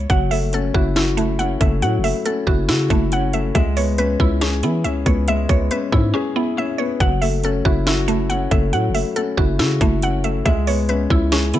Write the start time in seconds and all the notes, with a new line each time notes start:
Already playing: E5
0.10 F#1 F#3 F#5, kick, closed hi-hat
0.31 A3 E5, open hi-hat
0.53 C#4 A4, closed hi-hat
0.74 F#1 E4 F#4, kick
0.96 E4 F#4, snare, closed hi-hat
1.17 A3 E4, closed hi-hat
1.39 C#4 F#5, closed hi-hat
1.61 F#1 A3 E5, kick, closed hi-hat
1.82 A2 F#3 F#5, closed hi-hat
1.99 F#1
2.04 A3 E5, open hi-hat
2.25 C#4 A4, closed hi-hat
2.47 F#1 E4 F#4, kick
2.69 C#3 E4 F#4, snare, closed hi-hat
2.90 F#1 A3 E4, kick, closed hi-hat
3.12 C#4 F#5, closed hi-hat
3.33 A3 E5, closed hi-hat
3.55 C#2 G#3 E5, kick, closed hi-hat
3.77 B3 C#5, open hi-hat
3.98 C#4 B4, closed hi-hat
4.20 C#2 E4, kick
4.41 C#4 G#4, snare, closed hi-hat
4.63 E3 B3 E4, closed hi-hat
4.84 C#2 C#4 E5, closed hi-hat
5.06 C#2 B3 C#5, kick, closed hi-hat
5.28 G#3 E5, closed hi-hat
5.49 C#2 B3 C#5, kick, closed hi-hat
5.71 C#4 B4, closed hi-hat
5.92 G#2 E4, kick
6.14 C#4 G#4
6.36 B3 E4
6.57 C#4 E5
6.78 B3 C#5
7.00 F#1 F#3 F#5, kick, closed hi-hat
7.22 A3 E5, open hi-hat
7.44 C#4 A4, closed hi-hat
7.65 F#1 E4 F#4, kick
7.87 E4 F#4, snare, closed hi-hat
8.08 A3 E4, closed hi-hat
8.30 C#4 F#5, closed hi-hat
8.51 F#1 A3 E5, kick, closed hi-hat
8.73 A2 F#3 F#5, closed hi-hat
8.89 F#1
8.94 A3 E5, open hi-hat
9.16 C#4 A4, closed hi-hat
9.37 F#1 E4 F#4, kick
9.59 C#3 E4 F#4, snare, closed hi-hat
9.81 F#1 A3 E4, kick, closed hi-hat
10.02 C#4 F#5, closed hi-hat
10.24 A3 E5, closed hi-hat
10.45 C#2 G#3 E5, kick, closed hi-hat
10.67 B3 C#5, open hi-hat
10.89 C#4 B4, closed hi-hat
11.10 C#2 E4, kick
11.32 C#4 G#4, snare, closed hi-hat
11.54 E3 B3 E4, closed hi-hat